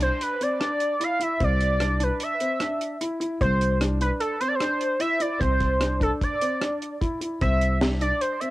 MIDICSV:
0, 0, Header, 1, 5, 480
1, 0, Start_track
1, 0, Key_signature, 0, "major"
1, 0, Tempo, 400534
1, 1679, Time_signature, 5, 2, 24, 8
1, 10192, End_track
2, 0, Start_track
2, 0, Title_t, "Analog synth lead"
2, 0, Program_c, 0, 81
2, 26, Note_on_c, 0, 72, 78
2, 26, Note_on_c, 0, 91, 78
2, 267, Note_on_c, 0, 71, 78
2, 267, Note_on_c, 0, 90, 78
2, 285, Note_off_c, 0, 72, 0
2, 285, Note_off_c, 0, 91, 0
2, 508, Note_on_c, 0, 74, 91
2, 508, Note_on_c, 0, 93, 91
2, 526, Note_off_c, 0, 71, 0
2, 526, Note_off_c, 0, 90, 0
2, 1244, Note_on_c, 0, 77, 93
2, 1244, Note_on_c, 0, 96, 93
2, 1262, Note_off_c, 0, 74, 0
2, 1262, Note_off_c, 0, 93, 0
2, 1467, Note_on_c, 0, 76, 89
2, 1467, Note_on_c, 0, 95, 89
2, 1485, Note_off_c, 0, 77, 0
2, 1485, Note_off_c, 0, 96, 0
2, 1693, Note_off_c, 0, 76, 0
2, 1693, Note_off_c, 0, 95, 0
2, 1723, Note_on_c, 0, 74, 113
2, 1723, Note_on_c, 0, 93, 113
2, 2434, Note_on_c, 0, 71, 88
2, 2434, Note_on_c, 0, 90, 88
2, 2452, Note_off_c, 0, 74, 0
2, 2452, Note_off_c, 0, 93, 0
2, 2656, Note_off_c, 0, 71, 0
2, 2656, Note_off_c, 0, 90, 0
2, 2673, Note_on_c, 0, 76, 83
2, 2673, Note_on_c, 0, 95, 83
2, 3568, Note_off_c, 0, 76, 0
2, 3568, Note_off_c, 0, 95, 0
2, 4083, Note_on_c, 0, 72, 90
2, 4083, Note_on_c, 0, 91, 90
2, 4527, Note_off_c, 0, 72, 0
2, 4527, Note_off_c, 0, 91, 0
2, 4810, Note_on_c, 0, 71, 75
2, 4810, Note_on_c, 0, 90, 75
2, 4915, Note_off_c, 0, 71, 0
2, 4915, Note_off_c, 0, 90, 0
2, 5034, Note_on_c, 0, 69, 85
2, 5034, Note_on_c, 0, 88, 85
2, 5259, Note_off_c, 0, 69, 0
2, 5259, Note_off_c, 0, 88, 0
2, 5277, Note_on_c, 0, 72, 93
2, 5277, Note_on_c, 0, 91, 93
2, 5369, Note_on_c, 0, 74, 79
2, 5369, Note_on_c, 0, 93, 79
2, 5387, Note_off_c, 0, 72, 0
2, 5387, Note_off_c, 0, 91, 0
2, 5451, Note_on_c, 0, 72, 99
2, 5451, Note_on_c, 0, 91, 99
2, 5469, Note_off_c, 0, 74, 0
2, 5469, Note_off_c, 0, 93, 0
2, 5989, Note_off_c, 0, 72, 0
2, 5989, Note_off_c, 0, 91, 0
2, 5997, Note_on_c, 0, 76, 100
2, 5997, Note_on_c, 0, 95, 100
2, 6247, Note_on_c, 0, 74, 90
2, 6247, Note_on_c, 0, 93, 90
2, 6265, Note_off_c, 0, 76, 0
2, 6265, Note_off_c, 0, 95, 0
2, 6479, Note_on_c, 0, 72, 108
2, 6479, Note_on_c, 0, 91, 108
2, 6497, Note_off_c, 0, 74, 0
2, 6497, Note_off_c, 0, 93, 0
2, 7199, Note_off_c, 0, 72, 0
2, 7199, Note_off_c, 0, 91, 0
2, 7219, Note_on_c, 0, 69, 72
2, 7219, Note_on_c, 0, 88, 72
2, 7322, Note_off_c, 0, 69, 0
2, 7322, Note_off_c, 0, 88, 0
2, 7470, Note_on_c, 0, 74, 86
2, 7470, Note_on_c, 0, 93, 86
2, 8367, Note_off_c, 0, 74, 0
2, 8367, Note_off_c, 0, 93, 0
2, 8886, Note_on_c, 0, 76, 96
2, 8886, Note_on_c, 0, 95, 96
2, 9330, Note_off_c, 0, 76, 0
2, 9330, Note_off_c, 0, 95, 0
2, 9602, Note_on_c, 0, 74, 75
2, 9602, Note_on_c, 0, 93, 75
2, 9835, Note_on_c, 0, 72, 78
2, 9835, Note_on_c, 0, 91, 78
2, 9853, Note_off_c, 0, 74, 0
2, 9853, Note_off_c, 0, 93, 0
2, 10066, Note_on_c, 0, 76, 93
2, 10066, Note_on_c, 0, 95, 93
2, 10084, Note_off_c, 0, 72, 0
2, 10084, Note_off_c, 0, 91, 0
2, 10192, Note_off_c, 0, 76, 0
2, 10192, Note_off_c, 0, 95, 0
2, 10192, End_track
3, 0, Start_track
3, 0, Title_t, "Grand piano"
3, 0, Program_c, 1, 0
3, 0, Note_on_c, 1, 62, 63
3, 397, Note_off_c, 1, 62, 0
3, 488, Note_on_c, 1, 60, 62
3, 683, Note_off_c, 1, 60, 0
3, 720, Note_on_c, 1, 62, 72
3, 1117, Note_off_c, 1, 62, 0
3, 1199, Note_on_c, 1, 64, 60
3, 1398, Note_off_c, 1, 64, 0
3, 1433, Note_on_c, 1, 64, 64
3, 1634, Note_off_c, 1, 64, 0
3, 1680, Note_on_c, 1, 60, 69
3, 2076, Note_off_c, 1, 60, 0
3, 2158, Note_on_c, 1, 62, 72
3, 2357, Note_off_c, 1, 62, 0
3, 2397, Note_on_c, 1, 62, 59
3, 2794, Note_off_c, 1, 62, 0
3, 2885, Note_on_c, 1, 60, 62
3, 3081, Note_off_c, 1, 60, 0
3, 3128, Note_on_c, 1, 62, 68
3, 3521, Note_off_c, 1, 62, 0
3, 3606, Note_on_c, 1, 64, 64
3, 3801, Note_off_c, 1, 64, 0
3, 3837, Note_on_c, 1, 64, 73
3, 4036, Note_off_c, 1, 64, 0
3, 4084, Note_on_c, 1, 60, 78
3, 4479, Note_off_c, 1, 60, 0
3, 4565, Note_on_c, 1, 62, 67
3, 4761, Note_off_c, 1, 62, 0
3, 4803, Note_on_c, 1, 62, 59
3, 5198, Note_off_c, 1, 62, 0
3, 5280, Note_on_c, 1, 60, 70
3, 5478, Note_off_c, 1, 60, 0
3, 5520, Note_on_c, 1, 62, 70
3, 5916, Note_off_c, 1, 62, 0
3, 5987, Note_on_c, 1, 64, 67
3, 6190, Note_off_c, 1, 64, 0
3, 6232, Note_on_c, 1, 64, 61
3, 6433, Note_off_c, 1, 64, 0
3, 6465, Note_on_c, 1, 60, 84
3, 6868, Note_off_c, 1, 60, 0
3, 6950, Note_on_c, 1, 62, 66
3, 7152, Note_off_c, 1, 62, 0
3, 7190, Note_on_c, 1, 62, 59
3, 7591, Note_off_c, 1, 62, 0
3, 7690, Note_on_c, 1, 60, 62
3, 7884, Note_off_c, 1, 60, 0
3, 7921, Note_on_c, 1, 62, 70
3, 8317, Note_off_c, 1, 62, 0
3, 8401, Note_on_c, 1, 64, 65
3, 8599, Note_off_c, 1, 64, 0
3, 8638, Note_on_c, 1, 64, 61
3, 8837, Note_off_c, 1, 64, 0
3, 8881, Note_on_c, 1, 60, 70
3, 9278, Note_off_c, 1, 60, 0
3, 9358, Note_on_c, 1, 62, 65
3, 9557, Note_off_c, 1, 62, 0
3, 9599, Note_on_c, 1, 62, 56
3, 9997, Note_off_c, 1, 62, 0
3, 10082, Note_on_c, 1, 60, 61
3, 10192, Note_off_c, 1, 60, 0
3, 10192, End_track
4, 0, Start_track
4, 0, Title_t, "Upright bass"
4, 0, Program_c, 2, 32
4, 1688, Note_on_c, 2, 36, 79
4, 2497, Note_off_c, 2, 36, 0
4, 4090, Note_on_c, 2, 36, 85
4, 4898, Note_off_c, 2, 36, 0
4, 6485, Note_on_c, 2, 36, 76
4, 7295, Note_off_c, 2, 36, 0
4, 8889, Note_on_c, 2, 36, 85
4, 9698, Note_off_c, 2, 36, 0
4, 10192, End_track
5, 0, Start_track
5, 0, Title_t, "Drums"
5, 4, Note_on_c, 9, 42, 50
5, 124, Note_off_c, 9, 42, 0
5, 252, Note_on_c, 9, 42, 56
5, 372, Note_off_c, 9, 42, 0
5, 491, Note_on_c, 9, 42, 51
5, 611, Note_off_c, 9, 42, 0
5, 727, Note_on_c, 9, 37, 80
5, 727, Note_on_c, 9, 42, 59
5, 847, Note_off_c, 9, 37, 0
5, 847, Note_off_c, 9, 42, 0
5, 961, Note_on_c, 9, 42, 42
5, 1080, Note_off_c, 9, 42, 0
5, 1209, Note_on_c, 9, 42, 69
5, 1329, Note_off_c, 9, 42, 0
5, 1446, Note_on_c, 9, 42, 53
5, 1565, Note_off_c, 9, 42, 0
5, 1682, Note_on_c, 9, 42, 61
5, 1684, Note_on_c, 9, 36, 82
5, 1802, Note_off_c, 9, 42, 0
5, 1804, Note_off_c, 9, 36, 0
5, 1924, Note_on_c, 9, 42, 47
5, 2044, Note_off_c, 9, 42, 0
5, 2160, Note_on_c, 9, 37, 91
5, 2160, Note_on_c, 9, 42, 64
5, 2279, Note_off_c, 9, 37, 0
5, 2279, Note_off_c, 9, 42, 0
5, 2399, Note_on_c, 9, 42, 52
5, 2519, Note_off_c, 9, 42, 0
5, 2636, Note_on_c, 9, 42, 67
5, 2756, Note_off_c, 9, 42, 0
5, 2879, Note_on_c, 9, 42, 50
5, 2999, Note_off_c, 9, 42, 0
5, 3117, Note_on_c, 9, 37, 83
5, 3117, Note_on_c, 9, 42, 66
5, 3237, Note_off_c, 9, 37, 0
5, 3237, Note_off_c, 9, 42, 0
5, 3368, Note_on_c, 9, 42, 54
5, 3488, Note_off_c, 9, 42, 0
5, 3608, Note_on_c, 9, 42, 70
5, 3728, Note_off_c, 9, 42, 0
5, 3847, Note_on_c, 9, 42, 52
5, 3967, Note_off_c, 9, 42, 0
5, 4086, Note_on_c, 9, 36, 96
5, 4087, Note_on_c, 9, 42, 71
5, 4206, Note_off_c, 9, 36, 0
5, 4207, Note_off_c, 9, 42, 0
5, 4328, Note_on_c, 9, 42, 49
5, 4448, Note_off_c, 9, 42, 0
5, 4566, Note_on_c, 9, 37, 95
5, 4566, Note_on_c, 9, 42, 69
5, 4685, Note_off_c, 9, 37, 0
5, 4685, Note_off_c, 9, 42, 0
5, 4805, Note_on_c, 9, 42, 47
5, 4925, Note_off_c, 9, 42, 0
5, 5039, Note_on_c, 9, 42, 57
5, 5159, Note_off_c, 9, 42, 0
5, 5282, Note_on_c, 9, 42, 48
5, 5402, Note_off_c, 9, 42, 0
5, 5518, Note_on_c, 9, 37, 88
5, 5518, Note_on_c, 9, 42, 61
5, 5638, Note_off_c, 9, 37, 0
5, 5638, Note_off_c, 9, 42, 0
5, 5762, Note_on_c, 9, 42, 49
5, 5882, Note_off_c, 9, 42, 0
5, 5993, Note_on_c, 9, 42, 64
5, 6113, Note_off_c, 9, 42, 0
5, 6235, Note_on_c, 9, 42, 55
5, 6354, Note_off_c, 9, 42, 0
5, 6480, Note_on_c, 9, 36, 82
5, 6483, Note_on_c, 9, 42, 63
5, 6600, Note_off_c, 9, 36, 0
5, 6603, Note_off_c, 9, 42, 0
5, 6717, Note_on_c, 9, 42, 49
5, 6720, Note_on_c, 9, 36, 67
5, 6837, Note_off_c, 9, 42, 0
5, 6839, Note_off_c, 9, 36, 0
5, 6960, Note_on_c, 9, 37, 91
5, 6960, Note_on_c, 9, 42, 69
5, 7080, Note_off_c, 9, 37, 0
5, 7080, Note_off_c, 9, 42, 0
5, 7204, Note_on_c, 9, 36, 63
5, 7207, Note_on_c, 9, 42, 56
5, 7324, Note_off_c, 9, 36, 0
5, 7327, Note_off_c, 9, 42, 0
5, 7447, Note_on_c, 9, 36, 78
5, 7450, Note_on_c, 9, 42, 62
5, 7567, Note_off_c, 9, 36, 0
5, 7570, Note_off_c, 9, 42, 0
5, 7686, Note_on_c, 9, 42, 57
5, 7806, Note_off_c, 9, 42, 0
5, 7928, Note_on_c, 9, 37, 81
5, 7928, Note_on_c, 9, 42, 70
5, 8047, Note_off_c, 9, 37, 0
5, 8047, Note_off_c, 9, 42, 0
5, 8173, Note_on_c, 9, 42, 46
5, 8293, Note_off_c, 9, 42, 0
5, 8408, Note_on_c, 9, 36, 87
5, 8411, Note_on_c, 9, 42, 66
5, 8528, Note_off_c, 9, 36, 0
5, 8531, Note_off_c, 9, 42, 0
5, 8646, Note_on_c, 9, 42, 58
5, 8766, Note_off_c, 9, 42, 0
5, 8885, Note_on_c, 9, 42, 60
5, 8886, Note_on_c, 9, 36, 90
5, 9005, Note_off_c, 9, 42, 0
5, 9006, Note_off_c, 9, 36, 0
5, 9124, Note_on_c, 9, 42, 42
5, 9244, Note_off_c, 9, 42, 0
5, 9363, Note_on_c, 9, 38, 92
5, 9363, Note_on_c, 9, 42, 70
5, 9483, Note_off_c, 9, 38, 0
5, 9483, Note_off_c, 9, 42, 0
5, 9600, Note_on_c, 9, 42, 51
5, 9720, Note_off_c, 9, 42, 0
5, 9842, Note_on_c, 9, 42, 59
5, 9961, Note_off_c, 9, 42, 0
5, 10081, Note_on_c, 9, 42, 45
5, 10192, Note_off_c, 9, 42, 0
5, 10192, End_track
0, 0, End_of_file